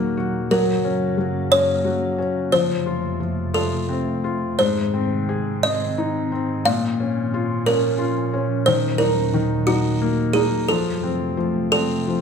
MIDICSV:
0, 0, Header, 1, 4, 480
1, 0, Start_track
1, 0, Tempo, 674157
1, 351, Time_signature, 6, 3, 24, 8
1, 1791, Tempo, 689655
1, 4671, Tempo, 671141
1, 7551, Tempo, 695249
1, 8609, End_track
2, 0, Start_track
2, 0, Title_t, "Kalimba"
2, 0, Program_c, 0, 108
2, 0, Note_on_c, 0, 68, 83
2, 364, Note_on_c, 0, 70, 78
2, 375, Note_off_c, 0, 68, 0
2, 809, Note_off_c, 0, 70, 0
2, 1080, Note_on_c, 0, 73, 102
2, 1797, Note_on_c, 0, 72, 90
2, 1816, Note_off_c, 0, 73, 0
2, 2507, Note_on_c, 0, 69, 76
2, 2532, Note_off_c, 0, 72, 0
2, 3233, Note_on_c, 0, 72, 78
2, 3257, Note_off_c, 0, 69, 0
2, 3689, Note_off_c, 0, 72, 0
2, 3960, Note_on_c, 0, 75, 89
2, 4643, Note_off_c, 0, 75, 0
2, 4672, Note_on_c, 0, 77, 95
2, 5362, Note_off_c, 0, 77, 0
2, 5394, Note_on_c, 0, 70, 83
2, 6106, Note_on_c, 0, 72, 90
2, 6130, Note_off_c, 0, 70, 0
2, 6337, Note_on_c, 0, 70, 84
2, 6354, Note_off_c, 0, 72, 0
2, 6792, Note_off_c, 0, 70, 0
2, 6827, Note_on_c, 0, 66, 83
2, 7279, Note_off_c, 0, 66, 0
2, 7304, Note_on_c, 0, 68, 85
2, 7554, Note_on_c, 0, 69, 76
2, 7555, Note_off_c, 0, 68, 0
2, 8260, Note_off_c, 0, 69, 0
2, 8268, Note_on_c, 0, 69, 92
2, 8609, Note_off_c, 0, 69, 0
2, 8609, End_track
3, 0, Start_track
3, 0, Title_t, "Felt piano"
3, 0, Program_c, 1, 0
3, 0, Control_c, 1, 64, 127
3, 0, Note_on_c, 1, 51, 53
3, 0, Note_on_c, 1, 58, 53
3, 0, Note_on_c, 1, 66, 49
3, 113, Note_off_c, 1, 66, 0
3, 124, Note_on_c, 1, 66, 57
3, 324, Note_off_c, 1, 51, 0
3, 339, Note_off_c, 1, 58, 0
3, 350, Note_off_c, 1, 66, 0
3, 362, Control_c, 1, 64, 0
3, 363, Note_on_c, 1, 54, 69
3, 483, Control_c, 1, 64, 127
3, 602, Note_on_c, 1, 61, 51
3, 827, Note_off_c, 1, 54, 0
3, 837, Note_on_c, 1, 54, 51
3, 1065, Note_off_c, 1, 61, 0
3, 1075, Note_on_c, 1, 61, 57
3, 1304, Note_off_c, 1, 54, 0
3, 1315, Note_on_c, 1, 54, 58
3, 1544, Note_off_c, 1, 61, 0
3, 1555, Note_on_c, 1, 61, 50
3, 1778, Note_off_c, 1, 54, 0
3, 1786, Note_off_c, 1, 61, 0
3, 1795, Note_on_c, 1, 53, 65
3, 1800, Control_c, 1, 64, 0
3, 1909, Control_c, 1, 64, 127
3, 2031, Note_on_c, 1, 65, 52
3, 2258, Note_off_c, 1, 53, 0
3, 2269, Note_on_c, 1, 53, 53
3, 2491, Note_off_c, 1, 65, 0
3, 2501, Note_on_c, 1, 65, 49
3, 2747, Note_on_c, 1, 60, 55
3, 2981, Note_off_c, 1, 65, 0
3, 2992, Note_on_c, 1, 65, 51
3, 3209, Note_off_c, 1, 53, 0
3, 3219, Note_off_c, 1, 60, 0
3, 3228, Note_off_c, 1, 65, 0
3, 3237, Note_on_c, 1, 44, 60
3, 3245, Control_c, 1, 64, 0
3, 3347, Control_c, 1, 64, 127
3, 3476, Note_on_c, 1, 60, 52
3, 3721, Note_on_c, 1, 68, 52
3, 3963, Note_off_c, 1, 60, 0
3, 3973, Note_on_c, 1, 60, 51
3, 4203, Note_on_c, 1, 63, 51
3, 4427, Note_off_c, 1, 60, 0
3, 4438, Note_on_c, 1, 60, 52
3, 4642, Note_off_c, 1, 44, 0
3, 4643, Note_off_c, 1, 68, 0
3, 4659, Note_off_c, 1, 63, 0
3, 4665, Note_off_c, 1, 60, 0
3, 4678, Control_c, 1, 64, 0
3, 4683, Note_on_c, 1, 46, 63
3, 4791, Control_c, 1, 64, 127
3, 4918, Note_on_c, 1, 61, 46
3, 5161, Note_on_c, 1, 65, 55
3, 5382, Note_off_c, 1, 61, 0
3, 5393, Note_on_c, 1, 61, 50
3, 5611, Note_off_c, 1, 65, 0
3, 5622, Note_on_c, 1, 65, 57
3, 5864, Note_off_c, 1, 61, 0
3, 5874, Note_on_c, 1, 61, 54
3, 6084, Note_off_c, 1, 46, 0
3, 6089, Note_off_c, 1, 65, 0
3, 6103, Note_off_c, 1, 61, 0
3, 6116, Control_c, 1, 64, 0
3, 6117, Note_on_c, 1, 51, 64
3, 6242, Control_c, 1, 64, 127
3, 6350, Note_on_c, 1, 63, 52
3, 6580, Note_off_c, 1, 51, 0
3, 6591, Note_on_c, 1, 51, 53
3, 6824, Note_off_c, 1, 63, 0
3, 6834, Note_on_c, 1, 63, 57
3, 7075, Note_on_c, 1, 58, 57
3, 7310, Note_off_c, 1, 63, 0
3, 7320, Note_on_c, 1, 63, 53
3, 7524, Note_off_c, 1, 51, 0
3, 7541, Note_off_c, 1, 58, 0
3, 7549, Note_off_c, 1, 63, 0
3, 7560, Control_c, 1, 64, 0
3, 7560, Note_on_c, 1, 53, 65
3, 7679, Control_c, 1, 64, 127
3, 7795, Note_on_c, 1, 60, 52
3, 8018, Note_off_c, 1, 53, 0
3, 8029, Note_on_c, 1, 53, 53
3, 8259, Note_off_c, 1, 60, 0
3, 8269, Note_on_c, 1, 60, 52
3, 8503, Note_off_c, 1, 53, 0
3, 8513, Note_on_c, 1, 53, 56
3, 8609, Note_off_c, 1, 53, 0
3, 8609, Note_off_c, 1, 60, 0
3, 8609, End_track
4, 0, Start_track
4, 0, Title_t, "Ambient pad"
4, 0, Program_c, 2, 92
4, 0, Note_on_c, 2, 39, 83
4, 0, Note_on_c, 2, 46, 79
4, 0, Note_on_c, 2, 54, 87
4, 331, Note_off_c, 2, 39, 0
4, 331, Note_off_c, 2, 46, 0
4, 333, Note_off_c, 2, 54, 0
4, 361, Note_on_c, 2, 42, 79
4, 362, Note_on_c, 2, 49, 72
4, 362, Note_on_c, 2, 58, 90
4, 1781, Note_off_c, 2, 42, 0
4, 1781, Note_off_c, 2, 49, 0
4, 1781, Note_off_c, 2, 58, 0
4, 1792, Note_on_c, 2, 41, 83
4, 1795, Note_on_c, 2, 48, 73
4, 1795, Note_on_c, 2, 57, 91
4, 3222, Note_off_c, 2, 41, 0
4, 3223, Note_off_c, 2, 57, 0
4, 3224, Note_off_c, 2, 48, 0
4, 3233, Note_on_c, 2, 44, 76
4, 3236, Note_on_c, 2, 60, 88
4, 3237, Note_on_c, 2, 51, 67
4, 4654, Note_off_c, 2, 44, 0
4, 4656, Note_off_c, 2, 51, 0
4, 4656, Note_off_c, 2, 60, 0
4, 4661, Note_on_c, 2, 61, 86
4, 4662, Note_on_c, 2, 53, 72
4, 4667, Note_on_c, 2, 46, 80
4, 6087, Note_off_c, 2, 61, 0
4, 6088, Note_off_c, 2, 53, 0
4, 6108, Note_on_c, 2, 39, 76
4, 6109, Note_on_c, 2, 54, 88
4, 7520, Note_off_c, 2, 46, 0
4, 7536, Note_off_c, 2, 39, 0
4, 7537, Note_off_c, 2, 54, 0
4, 7537, Note_on_c, 2, 41, 79
4, 7543, Note_on_c, 2, 57, 90
4, 7544, Note_on_c, 2, 48, 74
4, 8609, Note_off_c, 2, 41, 0
4, 8609, Note_off_c, 2, 48, 0
4, 8609, Note_off_c, 2, 57, 0
4, 8609, End_track
0, 0, End_of_file